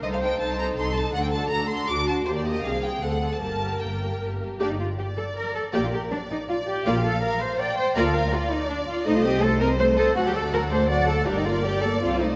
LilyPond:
<<
  \new Staff \with { instrumentName = "Violin section" } { \time 3/4 \key g \minor \tempo 4 = 162 ees''16 f''16 g''8 a''8 bes''8 c'''8 a''8 | fis''16 g''16 a''8 bes''8 c'''8 d'''8 a''8 | c''16 d''16 ees''8 f''8 g''8 fis''8. a''16 | a''4 g''4 r4 |
d''8 r2 r8 | d''8 r2 r8 | d''8 r2 r8 | d''8 r2 r8 |
c''8 ees''8 c''8 ees''8 c''8 ees''8 | fis''8 d''8 fis''8 d''8 fis''8 d''8 | bes'8 d''8 bes'8 d''8 c''8 ees''8 | }
  \new Staff \with { instrumentName = "Violin section" } { \time 3/4 \key g \minor <ees' a'>8 <ees' a'>8 <ees' a'>8 <ees' a'>8 <ees' a'>8 <ees' a'>8 | <d' fis'>8 <d' fis'>8 <d' fis'>8 <d' fis'>8 <d' fis'>8 <d' fis'>8 | <bes g'>8 <bes g'>8 <c' aes'>8 <c' aes'>8 <c' a'>8 <c' a'>8 | <bes g'>8 <bes g'>8 <bes g'>8 <bes g'>8 <bes g'>8 <bes g'>8 |
r4 d''2 | bes'4 d''4 d''4 | f''2 g''4 | f''4 d''2 |
ees''4 c''2 | a'2 fis''4 | d''2. | }
  \new Staff \with { instrumentName = "Viola section" } { \time 3/4 \key g \minor c''4 c''4 a'4 | a'2 fis'4 | g'4 aes'4 a'4 | bes'2~ bes'8 r8 |
<bes g'>8 r2 r8 | <bes g'>8 r2 r8 | <bes f'>8 r2 r8 | <bes f'>8 r2 r8 |
<a a'>8 <c' c''>8 <a a'>8 <c' c''>8 <a a'>8 <c' c''>8 | <fis fis'>8 <a a'>8 <fis fis'>8 <a a'>8 <fis fis'>8 <a a'>8 | <g g'>8 <bes bes'>8 <g g'>8 <bes bes'>8 <c' a'>8 <a c''>8 | }
  \new Staff \with { instrumentName = "Cello section" } { \time 3/4 \key g \minor c,4 c,4 c,4 | d,4 d,4 d,4 | ees,4 c,4 d,4 | g,4 g,4 g,4 |
d'16 ees'16 f'8 g'8 a'8 bes'8 a'8 | g'16 f'16 g'8 d'8 ees'8 f'8 g'8 | f'16 g'16 a'8 bes'8 c''8 d''8 c''8 | bes'16 a'16 bes'8 f'8 ees'8 d'8 f'8 |
ees'16 f'16 g'8 a'8 bes'8 c''8 a'8 | fis'16 g'16 a'8 bes'8 c''8 d''8 a'8 | d'16 ees'16 f'8 g'8 a'8 f'8 ees'8 | }
  \new Staff \with { instrumentName = "Double bass section" } { \clef bass \time 3/4 \key g \minor c,4 c,4 c,4 | d,4 d,4 d,4 | ees,4 c,4 d,4 | g,,4 g,,4 g,,4 |
g,,4 r2 | bes,,4 r2 | bes,,4 r2 | d,4 r2 |
c,2. | d,2. | g,,2 c,4 | }
>>